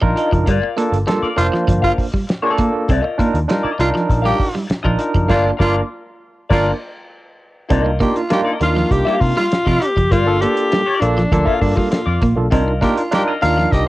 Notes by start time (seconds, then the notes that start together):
0.02 A#1 F3 D4 D#4 F4 A#4, kick
0.16 F4 A#4 D#5, muted clean electric guitar stroke, closed hi-hat
0.32 F#1 F3, muted clean electric guitar stroke, kick, closed hi-hat
0.46 G1 G3 F4 A#4 D5, kick, closed hi-hat
0.64 muted clean electric guitar stroke
0.77 A#3 D4 F4 A4, closed hi-hat
0.92 G1, muted clean electric guitar stroke, closed hi-hat
1.07 G3 A#3 D4 F4 A4, muted clean electric guitar stroke, snare, closed hi-hat
1.23 F4 A#4 D5, muted picked electric bass stroke
1.37 F1 A#3 D4 F4 C5, muted clean electric guitar stroke, closed hi-hat
1.53 F3, muted clean electric guitar stroke, snare
1.68 G1 F3, muted clean electric guitar stroke, kick, closed hi-hat
1.82 F4 A#4 F5, muted clean electric guitar stroke, kick
1.98 muted clean electric guitar stroke, kick, open hi-hat
2.12 G3, muted clean electric guitar stroke, kick, snare
2.27 muted clean electric guitar stroke, snare, closed hi-hat
2.42 A#3 D4 F4 G#4 A#4 D5
2.50 A4
2.58 A#3, muted clean electric guitar stroke, kick, closed hi-hat
2.73 muted clean electric guitar stroke
2.89 C2 C4 E4 A4 D5, kick, closed hi-hat
3.00 F4 A#4 D#5
3.04 muted clean electric guitar stroke
3.18 A#3 D4 D#4 F4 A#4, kick, closed hi-hat
3.33 D#2, muted clean electric guitar stroke, closed hi-hat
3.48 G3 D4 D#4 F4 A#4, muted clean electric guitar stroke, snare, closed hi-hat
3.63 F4 A#4 D#5, muted picked electric bass stroke
3.78 C2 D4 D#4 F4 A#4, muted clean electric guitar stroke, snare, closed hi-hat
3.93 F3, muted clean electric guitar stroke, snare
4.08 A#1, muted clean electric guitar stroke, kick, closed hi-hat
4.22 G3 F4 G4 A#4 F5
4.37 muted clean electric guitar stroke, kick, open hi-hat
4.53 G3, muted clean electric guitar stroke, snare
4.67 muted clean electric guitar stroke, muted picked electric bass stroke, snare, closed hi-hat
4.83 A#1 F3 D4 D#4 F4 A#4 D#5, kick
4.98 muted clean electric guitar stroke, closed hi-hat
5.14 F#1 F3, muted clean electric guitar stroke, kick, closed hi-hat
5.28 G1 A#3 D4 F4 A#4 D5, kick, snare, crash
5.57 G1 A#3 D4 F4 A#4 D5, kick, snare
6.49 G1 A#3 D4 F4 A#4 D5, kick, snare, crash
7.69 C2 A#3 C4 D4 D#4 E4 F4 A4 D5, kick, closed hi-hat
7.81 F4 A#4 D#5
7.86 muted clean electric guitar stroke
8.00 A#3 D4 D#4 F4 G4, kick, closed hi-hat
8.15 F4, muted clean electric guitar stroke, closed hi-hat
8.30 G3 A#3 D4 D#4 F4 G4, muted clean electric guitar stroke, snare, closed hi-hat
8.45 F4 A#4 D#5
8.59 D#2 A#3 D4 D#4 F4, muted clean electric guitar stroke, snare, closed hi-hat
8.63 F4
8.75 F3, muted clean electric guitar stroke, snare
8.91 C2 G4, muted clean electric guitar stroke, kick, closed hi-hat
9.05 G3 F4 G4 A#4 F5
9.21 C3 F4, muted clean electric guitar stroke, kick, open hi-hat
9.36 G3 F4, muted clean electric guitar stroke, snare
9.51 muted clean electric guitar stroke, snare, closed hi-hat
9.65 C3 F3 F4 A#4 D#5, kick
9.81 G4, muted clean electric guitar stroke, closed hi-hat
9.96 F#1 F3, muted clean electric guitar stroke, kick, closed hi-hat
10.11 G1 G3 F4 A#4 D5, kick, closed hi-hat
10.26 A#3 D4 F4 A4, muted clean electric guitar stroke
10.41 A#3 D4 F4 G4 A4, closed hi-hat
10.56 muted clean electric guitar stroke, closed hi-hat
10.71 G3, muted clean electric guitar stroke, snare, closed hi-hat
10.86 F4 A#4 D5
11.01 A#1 A#3 D4 F4 A4, muted clean electric guitar stroke, closed hi-hat
11.17 F3, muted clean electric guitar stroke, snare
11.32 D2 F3 A#3 D4 F4 A4, muted clean electric guitar stroke, kick, closed hi-hat
11.45 F4 A#4 F5, muted clean electric guitar stroke, kick
11.61 G2 D4, muted clean electric guitar stroke, kick, open hi-hat
11.76 G3 F4, muted clean electric guitar stroke, kick, snare
11.91 F4, muted clean electric guitar stroke, snare, closed hi-hat
12.06 F2 F4 A#4 D5
12.21 A#1 A#3, muted clean electric guitar stroke, kick, closed hi-hat
12.36 B1 A#3 D4 F4 A4, muted clean electric guitar stroke
12.50 C2 C4 D4 D#4 F4 A#4 D#5, kick, closed hi-hat
12.68 muted clean electric guitar stroke
12.81 A#3 D4 D#4 F4 G4 A#4, kick, closed hi-hat
12.96 F4, muted clean electric guitar stroke, closed hi-hat
13.11 G3 D4 D#4 F4 G4 A#4, muted clean electric guitar stroke, snare, closed hi-hat
13.28 F4 A#4 D#5
13.42 D#2 D4 D#4 F4 A#4 F5, muted clean electric guitar stroke, snare, closed hi-hat
13.57 F3, muted clean electric guitar stroke, snare
13.72 C2 G4 D#5, muted clean electric guitar stroke, kick, closed hi-hat